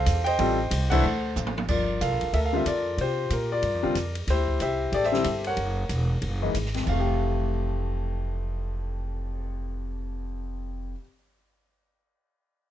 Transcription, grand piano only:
0.00 0.36 A4 medium
0.00 0.26 C5 medium
0.00 0.22 F5 loud
0.24 0.88 C5 medium
0.24 0.88 D#5 medium
0.24 0.92 G5 loud
0.39 0.57 G3 medium
0.39 0.57 C4 medium
0.39 0.58 F4 medium
0.39 0.58 A4 medium
0.90 1.03 E3 medium
0.90 1.03 A3 medium
0.90 1.03 D4 medium
0.90 1.03 E4 medium
0.90 1.53 A4 medium
0.90 1.53 C5 medium
0.90 1.32 F#5 loud
1.69 2.30 F4 medium
1.69 2.00 A#4 medium
1.69 1.99 D5 medium
2.01 2.34 A4 medium
2.01 2.33 A#4 medium
2.01 2.31 F5 medium
2.34 2.95 A4 medium
2.34 2.66 A#4 medium
2.34 2.39 E5 medium
2.45 2.55 F5 medium
2.53 2.64 D3 medium
2.53 2.65 G3 medium
2.53 2.65 C4 medium
2.53 2.65 F4 medium
2.53 2.67 E5 medium
2.67 2.97 F4 medium
2.67 2.97 A#4 medium
2.67 3.00 D5 medium
3.01 3.51 F4 medium
3.01 3.61 G4 medium
3.01 3.33 C5 medium
3.33 3.51 A#4 medium
3.52 3.82 F4 medium
3.52 4.13 A#4 medium
3.52 4.12 D5 medium
3.83 3.94 D3 medium
3.83 3.94 G3 medium
3.83 3.94 C4 medium
3.83 3.95 F4 medium
4.30 4.90 E4 medium
4.30 4.61 G4 medium
4.30 4.60 C5 medium
4.62 4.94 G4 medium
4.62 5.04 C5 medium
4.62 4.95 E5 medium
4.94 5.05 G4 medium
4.94 5.55 A4 medium
4.94 5.05 D5 loud
5.05 5.55 G4 medium
5.05 5.55 C5 medium
5.05 5.43 E5 loud
5.12 5.24 D3 medium
5.12 5.24 G3 medium
5.12 5.24 C4 medium
5.12 5.24 E4 medium
5.47 6.52 A#4 medium
5.47 6.52 C#5 medium
5.47 6.52 F#5 medium
6.42 6.53 E3 medium
6.42 6.54 G#3 medium
6.42 6.54 A#3 medium
6.42 6.54 D#4 medium
6.74 10.91 F2 medium
6.83 10.95 E3 medium
6.89 10.99 A3 medium
6.89 10.94 F5 medium
7.00 11.03 G4 medium

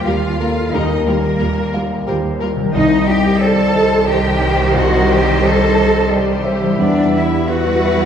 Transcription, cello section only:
0.06 0.74 F4 medium
0.73 1.07 D#4 medium
1.07 2.08 A#3 medium
2.74 3.05 D#4 loud
3.08 3.41 G4 medium
3.41 4.08 A4 loud
4.08 4.74 G4 loud
4.76 5.10 F#4 medium
5.10 5.44 G4 medium
5.44 6.12 A4 medium
6.12 6.81 G3 medium
6.80 7.15 D4 medium
7.15 7.50 E4 medium
7.49 8.05 F#4 medium

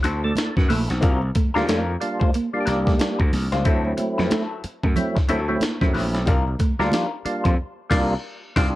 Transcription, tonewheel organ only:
0.24 0.56 A4 medium
0.24 0.55 D5 medium
0.57 0.70 F#4 medium
0.57 0.70 B4 medium
0.70 0.89 E4 medium
0.70 0.89 A4 medium
0.90 1.21 C4 medium
0.90 1.21 F#4 medium
1.55 1.83 G3 medium
1.55 1.83 A#3 medium
1.55 1.83 D4 medium
1.55 1.83 F4 loud
2.01 2.30 G3 medium
2.01 2.30 A#3 medium
2.01 2.31 D4 medium
2.01 2.31 F4 loud
2.53 3.20 G3 medium
2.53 3.20 A#3 medium
2.53 3.20 D4 medium
2.53 2.59 F4 medium
2.60 3.23 G4 loud
3.65 4.43 F#3 medium
3.65 4.43 A3 medium
3.65 4.43 C4 medium
3.65 4.43 E4 medium
4.96 5.18 F#3 loud
4.96 5.18 A3 loud
4.96 5.18 C4 loud
4.96 5.18 E4 loud
5.29 5.40 F#3 medium
5.29 5.40 A3 medium
5.29 5.40 C4 medium
5.29 5.40 E4 loud
5.48 5.65 F#3 medium
5.48 5.65 A3 medium
5.48 5.65 C4 medium
5.48 5.65 E4 medium
5.81 5.87 F3 medium
5.81 6.27 A3 medium
5.81 6.27 C4 medium
5.81 6.27 E4 loud
5.88 6.31 F#3 medium
6.79 7.07 G3 medium
6.79 7.07 A#3 medium
6.79 7.07 D4 medium
6.79 7.07 F4 loud
7.25 7.55 G3 medium
7.25 7.55 A#3 medium
7.25 7.55 D4 medium
7.25 7.55 F4 loud
7.91 8.14 G3 loud
7.91 8.14 A#3 loud
7.91 8.14 D4 loud
7.91 8.14 F4 loud
8.56 8.75 D4 loud
8.56 8.75 G4 loud

